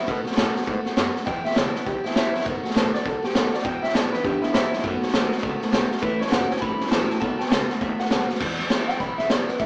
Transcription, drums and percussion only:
0.08 kick, snare
0.26 snare
0.32 snare
0.37 snare, hi-hat pedal
0.56 snare
0.62 snare
0.67 kick, snare
0.86 snare
0.97 snare, hi-hat pedal
1.16 snare
1.27 kick, snare
1.45 snare
1.51 snare
1.56 snare, hi-hat pedal
1.75 snare
1.86 kick, snare
2.05 snare
2.11 snare
2.16 snare, hi-hat pedal
2.35 snare
2.40 snare
2.46 kick, snare
2.65 snare
2.70 snare
2.76 snare, hi-hat pedal
2.95 snare
3.06 kick, snare
3.24 snare
3.30 snare
3.35 snare, hi-hat pedal
3.54 snare
3.59 snare
3.65 kick, snare
3.84 snare
3.89 snare
3.95 snare, hi-hat pedal
4.13 snare
4.25 kick, snare
4.43 snare
4.54 snare, hi-hat pedal
4.73 snare
4.79 snare
4.84 kick, snare
5.03 snare
5.08 snare
5.14 snare, hi-hat pedal
5.32 snare
5.38 snare
5.43 kick, snare
5.62 snare
5.73 snare, hi-hat pedal
5.92 snare
5.97 snare
6.03 kick, snare
6.21 snare
6.27 snare
6.32 snare, hi-hat pedal
6.51 snare
6.57 snare
6.62 kick, snare
6.80 snare
6.86 snare
6.92 snare, hi-hat pedal
7.10 snare
7.22 kick, snare
7.40 snare
7.46 snare
7.52 snare, hi-hat pedal
7.70 snare
7.81 kick, snare
7.99 snare
8.05 snare
8.11 snare, hi-hat pedal
8.29 snare
8.35 snare
8.40 kick, snare, crash
8.59 snare
8.70 snare, hi-hat pedal
8.89 snare
9.00 kick, snare
9.19 snare
9.30 snare, hi-hat pedal
9.48 snare
9.60 kick, snare

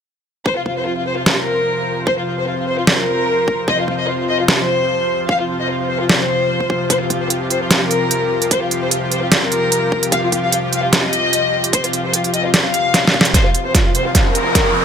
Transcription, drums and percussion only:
0.46 kick
0.66 kick
1.26 snare
2.07 kick
2.87 snare
3.48 kick
3.68 kick
3.88 kick
4.48 snare
5.29 kick
6.09 snare
6.61 kick
6.70 kick
6.90 kick, closed hi-hat
7.10 kick, closed hi-hat
7.30 closed hi-hat
7.50 closed hi-hat
7.71 snare, closed hi-hat
7.91 closed hi-hat
8.11 closed hi-hat
8.42 closed hi-hat
8.51 kick, closed hi-hat
8.71 closed hi-hat
8.91 closed hi-hat
9.12 closed hi-hat
9.32 snare, closed hi-hat
9.52 closed hi-hat
9.72 closed hi-hat
9.92 kick
10.03 closed hi-hat
10.12 kick, closed hi-hat
10.32 kick, closed hi-hat
10.52 closed hi-hat
10.73 closed hi-hat
10.93 snare, closed hi-hat
11.13 closed hi-hat
11.33 closed hi-hat
11.64 closed hi-hat
11.73 kick, closed hi-hat
11.84 closed hi-hat
11.93 closed hi-hat
12.13 closed hi-hat
12.24 closed hi-hat
12.34 closed hi-hat
12.54 snare, closed hi-hat
12.74 closed hi-hat
12.94 snare, closed hi-hat
13.05 kick, snare
13.14 kick
13.21 snare
13.25 closed hi-hat
13.34 kick, snare, closed hi-hat
13.54 closed hi-hat
13.75 kick, snare, closed hi-hat
13.95 closed hi-hat
14.15 kick, snare, closed hi-hat
14.35 closed hi-hat
14.55 kick, snare, closed hi-hat

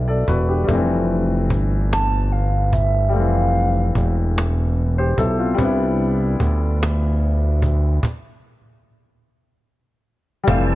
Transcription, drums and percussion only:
0.28 cajon bass
0.69 cajon bass
1.50 cajon bass
1.93 cajon slap
2.73 cajon bass
3.14 cajon slap
3.95 cajon bass
4.38 cajon slap
5.18 cajon bass
5.58 cajon bass
6.40 cajon bass
6.83 cajon slap
7.62 cajon bass
8.03 cajon bass, cajon slap
10.48 cajon bass

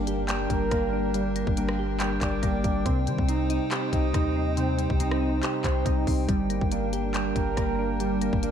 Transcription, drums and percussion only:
0.07 closed hi-hat
0.29 clap, closed hi-hat
0.50 kick, closed hi-hat
0.71 kick, cross-stick, closed hi-hat
1.14 closed hi-hat
1.36 closed hi-hat
1.47 kick
1.57 closed hi-hat
1.69 cross-stick
2.00 clap, closed hi-hat
2.21 kick, clap, closed hi-hat
2.43 kick, closed hi-hat
2.64 kick, closed hi-hat
2.86 kick, closed hi-hat
3.07 closed hi-hat
3.19 kick
3.29 closed hi-hat
3.50 closed hi-hat
3.71 clap, closed hi-hat
3.93 kick, closed hi-hat
4.14 kick, cross-stick, closed hi-hat
4.57 closed hi-hat
4.79 closed hi-hat
4.90 kick
5.00 closed hi-hat
5.11 cross-stick
5.43 clap, closed hi-hat
5.64 kick, clap, closed hi-hat
5.86 kick, closed hi-hat
6.07 kick, open hi-hat
6.29 kick, closed hi-hat
6.50 closed hi-hat
6.61 kick
6.72 closed hi-hat
6.93 closed hi-hat
7.14 clap, closed hi-hat
7.36 kick, closed hi-hat
7.57 kick, cross-stick, closed hi-hat
8.00 closed hi-hat
8.21 closed hi-hat
8.33 kick
8.43 closed hi-hat

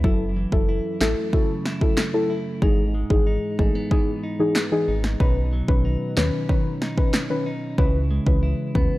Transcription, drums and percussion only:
0.04 kick
0.52 kick
1.01 snare, clap
1.33 kick
1.66 snare
1.81 kick
1.97 snare, clap
2.62 kick
3.10 kick
3.59 kick
3.91 kick
4.55 snare, clap
5.04 snare
5.20 kick
5.68 kick
6.17 snare, clap
6.49 kick
6.82 snare
6.98 kick
7.14 snare, clap
7.78 kick
8.27 kick
8.75 kick

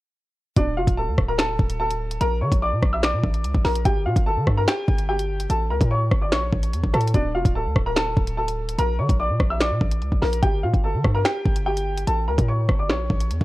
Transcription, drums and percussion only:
0.56 kick, closed hi-hat
0.87 kick, closed hi-hat
1.18 kick, cross-stick
1.39 finger snap, snare, closed hi-hat
1.59 kick
1.70 closed hi-hat
1.91 closed hi-hat
2.11 closed hi-hat
2.21 closed hi-hat
2.52 kick, closed hi-hat
2.83 kick, cross-stick
3.03 finger snap, snare, closed hi-hat
3.24 kick
3.34 closed hi-hat
3.44 closed hi-hat
3.55 kick
3.65 snare, open hi-hat
3.75 closed hi-hat
3.85 kick, closed hi-hat
4.16 kick, closed hi-hat
4.47 kick, cross-stick
4.68 finger snap, snare, closed hi-hat
4.88 kick
4.99 closed hi-hat
5.19 closed hi-hat
5.40 closed hi-hat
5.50 closed hi-hat
5.81 kick, closed hi-hat
6.11 kick, cross-stick
6.32 finger snap, snare, closed hi-hat
6.52 kick
6.63 closed hi-hat
6.73 closed hi-hat
6.83 kick
6.94 cross-stick, closed hi-hat
7.00 closed hi-hat
7.07 closed hi-hat
7.14 kick, closed hi-hat
7.45 kick, closed hi-hat
7.76 kick, cross-stick
7.96 finger snap, snare, closed hi-hat
8.17 kick
8.27 closed hi-hat
8.48 closed hi-hat
8.69 closed hi-hat
8.79 closed hi-hat
9.09 kick, closed hi-hat
9.40 kick, cross-stick
9.61 finger snap, snare, closed hi-hat
9.81 kick
9.92 closed hi-hat
10.02 closed hi-hat
10.12 kick
10.22 snare, open hi-hat
10.33 closed hi-hat
10.43 kick, closed hi-hat
10.74 kick, closed hi-hat
11.04 kick, cross-stick
11.25 finger snap, snare, closed hi-hat
11.46 kick
11.56 closed hi-hat
11.77 closed hi-hat
11.98 closed hi-hat
12.07 closed hi-hat
12.38 kick, closed hi-hat
12.69 kick, cross-stick
12.90 finger snap, snare, closed hi-hat
13.10 kick
13.20 closed hi-hat
13.31 closed hi-hat
13.41 kick

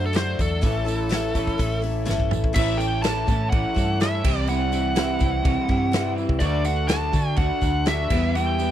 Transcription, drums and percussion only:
0.14 snare, open hi-hat, tambourine
0.39 kick, open hi-hat, tambourine
0.63 kick, open hi-hat, tambourine
0.87 open hi-hat, tambourine
1.11 snare, open hi-hat, tambourine
1.35 kick, open hi-hat, tambourine
1.47 kick
1.59 kick, open hi-hat, tambourine
1.84 open hi-hat
2.08 snare, tambourine
2.20 kick
2.31 mid tom, tambourine
2.44 kick
2.55 kick, crash, tambourine
2.80 tambourine
3.04 snare, tambourine, crash
3.28 kick, tambourine
3.52 kick, tambourine, crash
3.76 kick, tambourine
4.01 snare, tambourine, crash
4.24 kick, tambourine, crash
4.47 tambourine, crash
4.73 tambourine
4.96 snare, tambourine, crash
5.20 kick, tambourine
5.45 kick, tambourine, crash
5.69 kick
5.93 snare, tambourine, crash
6.18 tambourine
6.29 kick
6.40 kick, tambourine, crash
6.65 tambourine
6.89 snare, tambourine, crash
7.13 kick, tambourine
7.37 kick, tambourine, crash
7.62 kick, tambourine
7.86 snare, tambourine, crash
8.10 kick, tambourine, crash
8.35 tambourine, crash
8.60 tambourine

